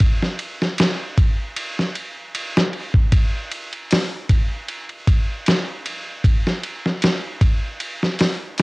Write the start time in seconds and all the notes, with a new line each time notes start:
0.00 kick, ride
0.23 snare
0.39 ride
0.62 snare
0.78 snare, ride
1.18 kick, ride
1.56 ride
1.79 snare
1.95 ride
2.35 ride
2.57 snare
2.73 ride
2.94 kick
3.12 kick, ride
3.52 ride
3.73 ride
3.91 snare, open hi-hat
4.29 kick, ride
4.68 ride
4.89 ride
5.07 kick, ride
5.46 snare, ride
5.86 ride
6.24 kick, ride
6.47 snare
6.64 ride
6.86 snare
7.02 snare, ride
7.41 kick, ride
7.80 ride
8.03 snare
8.19 snare, open hi-hat
8.58 open hi-hat